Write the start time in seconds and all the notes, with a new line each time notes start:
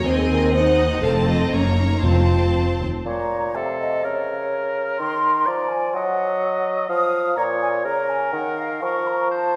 0.05 D#2 C4 C5 D#5 G#5
0.19 G#4
0.30 A#4
0.54 D#4 C5 D#5 F#5
1.02 F1 F2 C4 A4 F5 A5
1.28 F4 D#5
1.40 D#4
1.52 F#1 F#2 A#3 C#4 C#5 A#5
1.78 D#4
2.03 F1 F2 C4 F4 C5 A5
2.55 F2
2.80 D#2
3.05 A#2 C#5 A#5
3.54 C3 A4 F5
3.79 D#5
4.03 C#3 A#4 C#5
4.99 D#3 C6
5.46 F3 D5 A#5
5.70 G#5
5.93 F#3 D#5 F#5
6.89 F3 F5 D#6
7.37 A#2 C#5 A#5
7.61 G#5
7.85 C#3 A#4 A#5
8.09 G#5
8.33 D#3 F#5
8.58 F5
8.82 F3 A#4 C#6
9.06 A#5
9.31 C5 A5